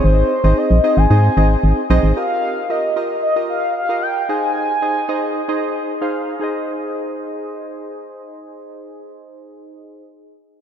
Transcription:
X:1
M:4/4
L:1/16
Q:1/4=113
K:Ab
V:1 name="Soft synth lead"
c4 e3 a6- a z2 | f4 e4 e2 f2 f2 g2 | a12 z4 | z16 |
z16 |]
V:2 name="Synth keys"
[CEAce]2 z [CEAce]2 z [CEAce]2 [CEAce]2 [CEAce]3 z [CEAce]2 | [FGBe]3 z [FGBe]2 [FGBe]2 z [FGBe]3 z [FGBe]2 z | [EAce]3 z [EAce]2 [EAce]2 z [EAce]3 z [EAcf]2 z | [EAce]16- |
[EAce]16 |]
V:3 name="FM bass" clef=bass
A,,,2 z A,,, z B,,, z A,,, A,,2 A,,,2 A,,, z B,,, A,,, | z16 | z16 | z16 |
z16 |]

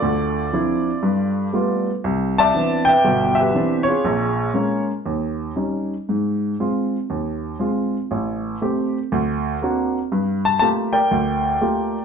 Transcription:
X:1
M:4/4
L:1/8
Q:"Swing" 1/4=120
K:Gm
V:1 name="Grand piano"
[FAd]6- [FAd] z | z [d=ea]2 [=Beg]2 [GBe]2 [F_A^c]- | [F_A^c]3 z4 z | z8 |
z8 | z a a [Bdg]4- [Bdg] |]
V:2 name="Grand piano"
[D,,D,]2 [F,CD=E] z G,,2 [G,A,=B,F] z | C,,2 [=E,=B,CD] z [G,,,=B,,]2 [E,B,CD] z | [B,,,B,,]2 [_A,B,_D] z E,,2 [G,DE] z | _A,,2 [_A,CF] z E,,2 [A,CF] z |
A,,,2 [A,CG] z D,,2 [^A,CD^F] z | G,,2 [A,B,FG] z D,,2 [A,B,FG] z |]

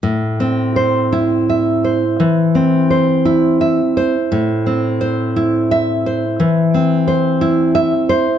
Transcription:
X:1
M:4/4
L:1/8
Q:1/4=57
K:Am
V:1 name="Nylon-string guitar"
(3A,, C c (3E e c (3E, C c (3E e c | (3A,, C c (3E e c (3E, C c (3E e c |]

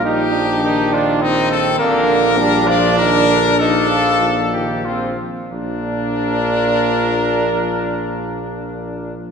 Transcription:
X:1
M:3/4
L:1/8
Q:1/4=94
K:Bb
V:1 name="Trumpet"
G3 F E A | B3 d B2 | A3 G F z | D6- |
D6 |]
V:2 name="Trombone"
E D3 C2 | B,2 D F D2 | E F2 z C z | D6- |
D6 |]
V:3 name="Trumpet"
E2 E D C2 | D2 D4 | D3 z C z | B6- |
B6 |]
V:4 name="French horn" clef=bass
F,2 E,4 | D,2 G, F, E, D, | F,2 F, E, F, z | F6- |
F6 |]
V:5 name="Tuba" clef=bass
B,,,6 | B,,,6- | B,,,4- B,,, z | B,,,6- |
B,,,6 |]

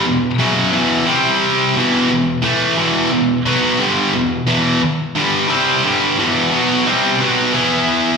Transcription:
X:1
M:4/4
L:1/8
Q:1/4=88
K:Em
V:1 name="Distorted electric guitar" clef=bass
[E,,B,,] [F,,^C,F,] [E,,B,,E,] [=C,G,C]2 [E,,B,,E,] [E,,B,,] [A,,E,A,] | [E,,B,,E,] [E,,B,,] [B,,F,B,] [G,,D,G,] [E,,B,,] [E,,B,,E,] z [G,,D,G,] | [C,G,C] [G,,D,G,] [E,,B,,E,] [B,,F,B,] [C,G,C] [B,,F,B,] [E,B,E]2 |]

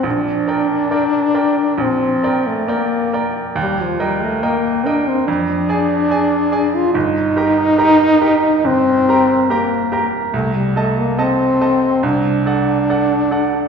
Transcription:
X:1
M:4/4
L:1/16
Q:1/4=70
K:Gm
V:1 name="Grand piano"
B,,,2 [Bdg]2 [Bdg]2 [Bdg]2 B,,,2 [Bdg]2 [Bdg]2 [Bdg]2 | E,,2 [Beg]2 [Beg]2 [Beg]2 F,,2 [_Ad_a]2 [Ada]2 [Ada]2 | G,,,2 [GBb]2 [GBb]2 [GBb]2 G,,,2 [GBb]2 [GBb]2 [GBb]2 | C,,2 [Aea]2 [Aea]2 [Aea]2 C,,2 [Ad^f]2 [Adf]2 [Adf]2 |]
V:2 name="French horn"
D8 C3 A, B,3 z | G, F, G, A, B,2 D C D6- D F | E8 C4 B,3 z | A, G, A, B, C4 D8 |]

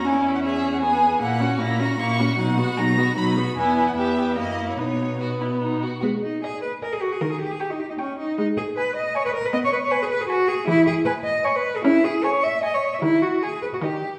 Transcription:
X:1
M:3/4
L:1/16
Q:1/4=153
K:B
V:1 name="Violin"
g3 f e3 f g4 | f4 a4 c'4 | f4 a4 b4 | g3 f e4 d3 c |
c4 B6 z2 | [K:G#m] z4 g4 g4 | z4 c'4 c'4 | z4 b4 b4 |
z4 b4 b4 | z4 b4 b4 | z4 c'4 c'4 | z4 b4 a4 |]
V:2 name="Cello"
E,,12 | A,,4 A,,4 A,,4 | B,,4 B,,4 B,,4 | E,,4 E,,4 F,,4 |
B,,8- B,,2 z2 | [K:G#m] B,2 D2 G2 B2 A G F G | A G =G ^G =G D G D C2 D2 | D2 G2 B2 d2 c B A B |
d c B c B G B G F2 G2 | E2 G2 B2 d2 c B2 G | E2 G2 c2 e2 d c2 e | E2 F2 G2 B F =G4 |]
V:3 name="Violin"
E4 G4 G4 | E2 F2 E2 F2 E2 F2 | D2 F2 D2 F2 D2 F2 | E2 E2 =G2 G2 E4 |
D4 F2 E2 D2 F2 | [K:G#m] z4 d4 d4 | z4 =g4 g4 | z4 g4 g4 |
z4 g4 g4 | z4 g4 g4 | z4 g4 g4 | z4 g4 d4 |]
V:4 name="Viola"
C8 B,4 | A,2 C2 A,2 C2 A,2 C2 | F,2 B,2 F,2 B,2 F,2 B,2 | B,4 B,4 A,4 |
B,4 B,6 z2 | [K:G#m] G,4 z8 | D,4 z8 | G,4 z8 |
B,4 z8 | E,4 z8 | C4 z8 | D,4 z4 D,4 |]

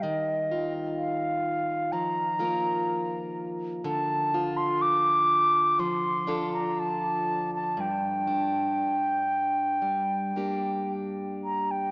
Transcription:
X:1
M:4/4
L:1/16
Q:1/4=61
K:Gm
V:1 name="Flute"
e3 z f4 b6 z2 | a3 c' d'4 c'3 b a3 a | g12 z2 b g |]
V:2 name="Steel-string acoustic guitar"
E,2 F6 F,2 [B,FB]6 | D,2 F6 F,2 [DFA]6 | G,,2 D6 G,2 [B,DG]6 |]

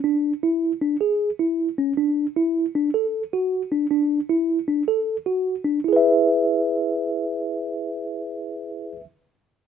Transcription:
X:1
M:5/4
L:1/8
Q:1/4=155
K:Emix
V:1 name="Tine electric piano"
D2 E2 D G2 E2 C | D2 E2 D A2 F2 D | D2 E2 D A2 F2 D | [EGBe]8- [EGBe]2- |
[EGBe]8- [EGBe]2 |]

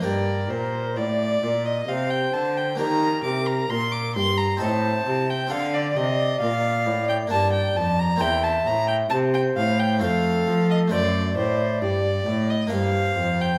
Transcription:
X:1
M:3/4
L:1/16
Q:1/4=66
K:Gm
V:1 name="Violin"
d2 c2 d3 e f g a g | b2 d' b c' d' c' b a3 g | f d e2 f3 g a g a b | g a b g a g f g f3 e |
d2 c2 d3 e f3 g |]
V:2 name="Flute"
B4 d4 c4 | B6 z2 c4 | d8 d4 | =e4 c4 A4 |
d6 z2 c4 |]
V:3 name="Harpsichord"
[B,DG]12 | [B,DG]8 [CEA]4 | [CDA]8 [B,DB]4 | [B,Cc]8 [A,Cc]4 |
[A,Dc]8 [B,Dd]4 |]
V:4 name="Harpsichord" clef=bass
G,,2 B,,2 A,,2 B,,2 C,2 D,2 | E,2 C,2 B,,2 G,,2 A,,2 C,2 | D,2 C,2 B,,2 A,,2 G,,2 F,,2 | =E,,2 A,,2 C,2 A,,2 F,,2 F,2 |
^F,,2 A,,2 G,,2 A,,2 G,,2 =F,,2 |]
V:5 name="Cello" clef=bass
G,,2 B,,2 A,,2 B,,2 C,2 D,2 | E,2 C,2 B,,2 G,,2 A,,2 C,2 | D,2 C,2 B,,2 A,,2 G,,2 F,,2 | =E,,2 A,,2 C,2 A,,2 F,,2 F,2 |
^F,,2 A,,2 G,,2 A,,2 G,,2 =F,,2 |]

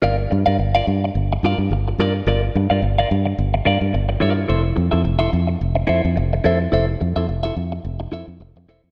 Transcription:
X:1
M:4/4
L:1/16
Q:"Swing 16ths" 1/4=108
K:Gdor
V:1 name="Clean electric guitar"
[FBdf] z2 [FBdf] z [FBdf] z4 [FBdf] z3 [FBdf] z | [FBdf] z2 [FBdf] z [FBdf] z4 [FBdf] z3 [FBdf] z | [EAce] z2 [EAce] z [EAce] z4 [EAce] z3 [EAce] z | [EAce] z2 [EAce] z [EAce] z4 [EAce] z3 [EAce] z |]
V:2 name="Fingered electric bass" clef=bass
G,,,2 G,, G,, G,,,2 G,,2 G,,,2 G,, G,, G,,,2 G,,2 | G,,,2 G,, G,, G,,,2 G,,2 G,,,2 G,, G,, G,,,2 G,,2 | F,,,2 F,, F,, F,,,2 F,,2 F,,,2 F,, F,, F,,,2 F,,2 | F,,,2 F,, F,, F,,,2 F,,2 F,,,2 F,, F,, F,,, F,, z F,, |]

